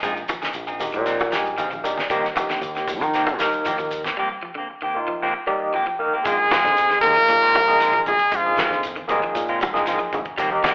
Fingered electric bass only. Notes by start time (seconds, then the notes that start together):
0.03 A#1
0.55 A#1
0.94 A#2
1.32 A#1
1.70 A#1
2.10 D#2
2.61 D#2
3.01 D#3
3.40 D#2
3.79 D#2
6.26 A#1
6.64 F2
7.03 D#2
7.16 muted fingered electric bass stroke
7.28 A#2
7.68 A#1
8.07 A#1
8.20 muted fingered electric bass stroke
8.32 A#1
8.71 F2
9.10 D#2
9.23 muted fingered electric bass stroke
9.35 A#2
9.74 A#1
10.13 A#1
10.26 muted fingered electric bass stroke
10.39 D#2